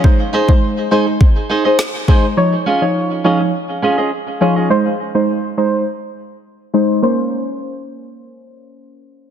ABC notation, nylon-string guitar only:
X:1
M:4/4
L:1/16
Q:1/4=103
K:Bbm
V:1 name="Nylon-string guitar"
z2 [EAce] z3 [EAce] z3 [EAce] [EAce] z2 [EAce] z | z2 [DFAe] z3 [DFAe] z3 [DFAe] [DFAe] z2 [DFAe] [DFAe] | z16 | z16 |]